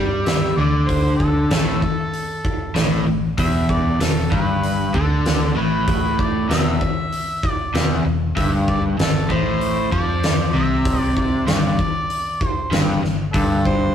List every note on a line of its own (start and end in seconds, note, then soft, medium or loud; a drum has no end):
0.00 0.53 G2 medium
0.00 0.56 G3 medium
0.26 0.55 E5 medium
0.26 snare loud
0.26 open hi-hat soft
0.56 1.47 D2 medium
0.56 1.50 D3 medium
0.56 0.88 D5 medium
0.87 1.16 C5 loud
0.87 kick loud
0.87 open hi-hat soft
1.16 3.01 A4 medium
1.16 kick medium
1.51 1.80 A1 medium
1.51 1.81 A2 medium
1.51 snare loud
1.51 open hi-hat soft
1.82 kick medium
2.14 open hi-hat soft
2.45 kick medium
2.75 3.04 A1 medium
2.75 3.06 A2 loud
2.75 snare loud
2.75 open hi-hat medium
3.05 3.35 A1 medium
3.05 3.32 A2 medium
3.38 3.96 E1 medium
3.38 4.00 E2 loud
3.38 3.68 E5 loud
3.38 kick loud
3.38 open hi-hat medium
3.69 4.04 D5 medium
3.69 kick medium
3.99 4.29 E1 medium
3.99 4.25 E2 medium
3.99 4.32 A4 medium
3.99 snare loud
3.99 open hi-hat medium
4.31 4.90 G1 medium
4.31 4.93 G2 medium
4.31 4.90 B4 loud
4.31 kick medium
4.63 open hi-hat soft
4.94 5.52 D2 medium
4.94 5.55 D3 loud
4.94 5.52 A4 medium
4.94 kick medium
5.26 snare loud
5.26 open hi-hat soft
5.56 6.45 A1 medium
5.56 6.49 A2 medium
5.56 6.21 B4 medium
5.88 kick loud
5.88 open hi-hat soft
6.19 6.48 D5 medium
6.19 kick medium
6.49 6.78 E1 medium
6.49 6.80 E2 medium
6.49 7.50 E5 loud
6.49 snare loud
6.49 open hi-hat soft
6.81 kick medium
7.13 open hi-hat soft
7.43 kick medium
7.50 8.01 D5 loud
7.74 8.03 E1 medium
7.74 8.04 E2 medium
7.74 snare loud
7.74 open hi-hat soft
8.05 8.34 E1 medium
8.05 8.30 E2 medium
8.36 8.95 G1 medium
8.36 8.96 G2 loud
8.36 8.51 E5 loud
8.36 kick loud
8.36 open hi-hat medium
8.68 8.83 D5 medium
8.68 kick medium
8.98 9.27 G1 medium
8.98 9.23 G2 medium
8.98 9.33 A4 medium
8.98 snare loud
8.98 open hi-hat medium
9.30 9.88 A1 medium
9.30 9.91 A2 loud
9.30 9.92 C5 loud
9.30 kick medium
9.61 open hi-hat soft
9.92 10.51 F2 medium
9.92 10.53 F3 medium
9.92 10.51 D5 loud
9.92 kick medium
10.24 snare loud
10.24 open hi-hat soft
10.54 11.43 C2 medium
10.54 11.47 C3 medium
10.54 10.99 E5 medium
10.85 kick loud
10.85 open hi-hat medium
10.99 11.16 D5 medium
11.16 11.46 D5 medium
11.16 kick medium
11.46 11.76 G1 medium
11.46 11.77 G2 medium
11.46 12.47 D5 loud
11.46 snare loud
11.46 open hi-hat soft
11.79 kick medium
12.10 open hi-hat soft
12.41 kick medium
12.47 12.99 C5 loud
12.71 13.01 G1 medium
12.71 13.02 G2 medium
12.71 snare loud
12.71 open hi-hat soft
13.02 13.32 G1 medium
13.02 13.28 G2 medium
13.02 snare soft
13.33 13.92 G1 medium
13.33 13.95 G2 loud
13.33 13.62 A4 medium
13.33 kick loud
13.33 open hi-hat soft
13.65 13.95 C5 loud
13.65 kick medium